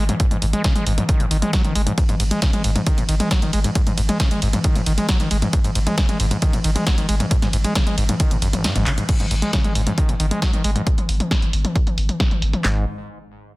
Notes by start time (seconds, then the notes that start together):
0.09 G#2, closed hi-hat, mid tom
0.20 G#2, kick, closed hi-hat
0.31 G#1 G#2, closed hi-hat, mid tom
0.42 G#1 G#2, open hi-hat
0.53 G#3, closed hi-hat, mid tom
0.64 C#3, kick, snare, closed hi-hat
0.76 G#1 G#3, closed hi-hat, mid tom
0.86 G#1 G#2, open hi-hat
0.98 G#2, closed hi-hat, mid tom
1.09 D#3, kick, closed hi-hat
1.20 G#1 G#2, closed hi-hat, mid tom
1.31 G#1 D#3, open hi-hat
1.42 G#3, closed hi-hat, mid tom
1.53 F#3, kick, snare, closed hi-hat
1.64 G#1 D#3, closed hi-hat, mid tom
1.75 G#1 G#3, open hi-hat
1.87 G#2, closed hi-hat, mid tom
1.98 G#2, kick, closed hi-hat, ride
2.09 G#1 G#2, closed hi-hat, mid tom, ride
2.20 G#1 G#2, open hi-hat, ride
2.31 G#3, closed hi-hat, mid tom, ride
2.42 C#3, kick, snare, closed hi-hat, ride
2.53 G#1 G#3, closed hi-hat, mid tom, ride
2.64 G#1 G#2, open hi-hat, ride
2.76 G#2, closed hi-hat, mid tom, ride
2.87 D#3, kick, closed hi-hat, ride
2.98 G#1 G#2, closed hi-hat, mid tom, ride
3.09 G#1 D#3, open hi-hat, ride
3.20 G#3, closed hi-hat, mid tom, ride
3.31 kick, snare, closed hi-hat, ride
3.42 G#1 D#3, closed hi-hat, mid tom, ride
3.53 G#1 G#3, open hi-hat, ride
3.64 G#2, closed hi-hat, mid tom, ride
3.75 G#2, kick, closed hi-hat, ride
3.87 G#1 G#2, closed hi-hat, mid tom, ride
3.98 G#1 G#2, open hi-hat, ride
4.09 G#3, closed hi-hat, mid tom, ride
4.20 C#3, kick, snare, closed hi-hat, ride
4.31 G#1 G#3, closed hi-hat, mid tom, ride
4.42 G#1 G#2, open hi-hat, ride
4.53 G#2, closed hi-hat, mid tom, ride
4.64 D#3, kick, closed hi-hat, ride
4.75 G#1 G#2, closed hi-hat, mid tom, ride
4.86 G#1 D#3, open hi-hat, ride
4.98 G#3, closed hi-hat, mid tom, ride
5.09 F#3, kick, snare, closed hi-hat, ride
5.20 G#1 D#3, closed hi-hat, mid tom, ride
5.31 G#1 G#3, open hi-hat, ride
5.42 G#2, closed hi-hat, mid tom, ride
5.53 G#2, kick, closed hi-hat, ride
5.64 G#1 G#2, closed hi-hat, mid tom, ride
5.75 G#1 G#2, open hi-hat, ride
5.87 G#3, closed hi-hat, mid tom, ride
5.97 C#3, kick, snare, closed hi-hat, ride
6.09 G#1 G#3, closed hi-hat, mid tom, ride
6.20 G#1 G#2, open hi-hat, ride
6.31 G#2, closed hi-hat, mid tom, ride
6.42 D#3, kick, closed hi-hat, ride
6.53 G#1 G#2, closed hi-hat, mid tom, ride
6.64 G#1 D#3, open hi-hat, ride
6.75 G#3, closed hi-hat, mid tom, ride
6.87 F#3, kick, snare, closed hi-hat, ride
6.98 G#1 D#3, closed hi-hat, mid tom, ride
7.09 G#1 G#3, open hi-hat, ride
7.20 G#2, closed hi-hat, mid tom, ride
7.31 G#2, kick, closed hi-hat, ride
7.42 G#1 G#2, snare, closed hi-hat, mid tom, ride
7.53 G#1 G#2, open hi-hat, ride
7.64 G#3, closed hi-hat, mid tom, ride
7.75 C#3, kick, snare, closed hi-hat, ride
7.87 G#1 G#3, closed hi-hat, mid tom, ride
7.98 G#1 G#2, open hi-hat, ride
8.09 G#2, closed hi-hat, mid tom, ride
8.20 D#3, kick, closed hi-hat, ride
8.31 G#1 G#2, closed hi-hat, mid tom, ride
8.42 G#1 F#2, open hi-hat, ride
8.53 G#1, closed hi-hat, mid tom, ride
8.64 G#2, snare, closed hi-hat, ride
8.75 G#1 G#2, closed hi-hat, mid tom, ride
8.86 G#1 C#3, clap, open hi-hat, ride
8.98 G#2, closed hi-hat, mid tom, ride
9.09 G#2, kick, closed hi-hat, crash
9.20 G#1 G#2, closed hi-hat, mid tom
9.31 G#1 G#2, open hi-hat
9.42 G#3, closed hi-hat, mid tom
9.53 C#3, kick, snare, closed hi-hat
9.64 G#1 G#3, closed hi-hat, mid tom
9.75 G#1 G#2, open hi-hat
9.87 G#2, closed hi-hat, mid tom
9.98 D#3, kick, closed hi-hat
10.09 G#1 G#2, closed hi-hat, mid tom
10.20 G#1 D#3, open hi-hat
10.31 G#3, closed hi-hat, mid tom
10.42 F#3, kick, snare, closed hi-hat
10.53 G#1 D#3, closed hi-hat, mid tom
10.64 G#1 G#3, open hi-hat
10.76 G#2, closed hi-hat, mid tom
10.87 kick, closed hi-hat
10.98 G#1, closed hi-hat, mid tom
11.09 G#1, open hi-hat
11.20 closed hi-hat, mid tom
11.31 kick, snare, closed hi-hat
11.42 G#1, closed hi-hat, mid tom
11.53 G#1, open hi-hat
11.65 closed hi-hat, mid tom
11.76 kick, closed hi-hat
11.87 G#1, closed hi-hat, mid tom
11.98 G#1, open hi-hat
12.09 closed hi-hat, mid tom
12.20 kick, snare, closed hi-hat
12.31 G#1, closed hi-hat, mid tom
12.42 G#1, open hi-hat
12.53 closed hi-hat, mid tom
12.64 G#1 G#2, snare, clap